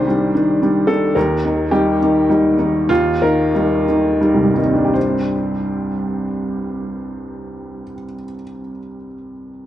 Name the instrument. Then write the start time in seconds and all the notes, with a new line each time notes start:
upright piano
Already playing: C2 D#3 D4 G4 C5
0.07 G3 D4
0.35 D#3 D4
0.62 G3 D4
0.87 D#3 D4 A4
1.15 D#2 A#4
1.45 D#3 D#4
1.71 G3 D#4 G4
2.02 D#3 D#4
2.29 G3 D#4
2.59 D#3 D#4
2.89 D#2 F4
3.22 D#3 D#4 A#4
3.55 G3 D#4
3.89 D#3 D#4
4.21 G3 D#4
4.34 C2
4.43 G2
4.54 D#3 G3 D#4
4.64 C4
4.74 D4
4.85 G4
4.94 C5